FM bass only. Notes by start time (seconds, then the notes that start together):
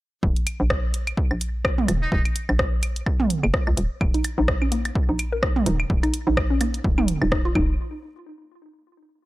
0.23 D#1
0.60 A#1
1.31 A#1
1.88 D#1
2.12 D#1
2.49 A#1
3.43 F#1
3.67 C#2
3.77 D#1
4.01 D#1
4.38 A#1
5.09 A#1
5.66 D#1
5.90 D#1
6.27 A#1
6.84 D#1
7.22 D#1
7.55 D#1